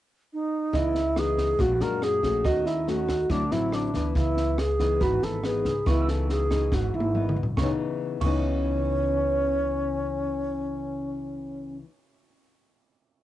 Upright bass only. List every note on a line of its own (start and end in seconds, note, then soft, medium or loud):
0.73 1.55 C#2 medium
1.59 1.79 A#1 medium
1.80 2.20 F#2 medium
2.23 2.43 A#1 medium
2.44 3.26 D#2 medium
3.30 3.50 D2 loud
3.52 3.91 A1 medium
3.94 4.14 D2 medium
4.16 4.97 C#2 loud
5.01 5.21 G#1 loud
5.23 5.63 G#1 medium
5.65 5.85 C#2 medium
5.86 6.68 C#2 medium
6.72 6.92 G#1 loud
6.94 7.33 G#1 medium
7.36 7.56 C#2 medium
7.58 7.69 C#2 medium
8.22 11.80 C#2 medium